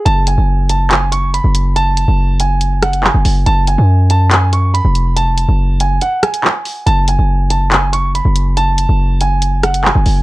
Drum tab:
HH |x-x---x-x-x-x-x-|x-x---x-x-xx--o-|x-x---x-x-x-x-x-|x-x---x-x-xx--o-|
CP |--------x-------|------------x---|--------x-------|------------x---|
SD |----------------|----------r-----|----------------|----------r-----|

HH |x-x---x-x-x-x-x-|x-x---x-x-xx--o-|
CP |--------x-------|------------x---|
SD |----------------|----------r-----|